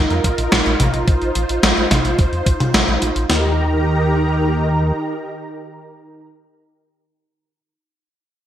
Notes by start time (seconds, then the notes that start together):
Already playing: D#4 F4 A#4
0.10 F2, closed hi-hat
0.24 A#1, kick, closed hi-hat
0.38 A#1, closed hi-hat
0.52 A#1, snare, closed hi-hat
0.66 A#1, closed hi-hat
0.80 A#1, closed hi-hat, mid tom
0.94 A#1, closed hi-hat
1.07 A#1 C5, kick, closed hi-hat
1.22 A#1, closed hi-hat
1.35 A#1, closed hi-hat
1.49 A#1, closed hi-hat
1.63 A#1, snare, closed hi-hat
1.77 A#1, closed hi-hat
1.91 A#1, snare, closed hi-hat, mid tom
2.05 A#1, closed hi-hat
2.19 G#1, kick, closed hi-hat
2.32 F2, closed hi-hat
2.46 A#1, kick, closed hi-hat
2.60 A#1, closed hi-hat, mid tom
2.74 A#1, snare, closed hi-hat
2.88 A#1, closed hi-hat
3.02 A#1, closed hi-hat
3.16 A#1, closed hi-hat
3.30 D#2 D#3 D#4 G4 A#4 A#5, snare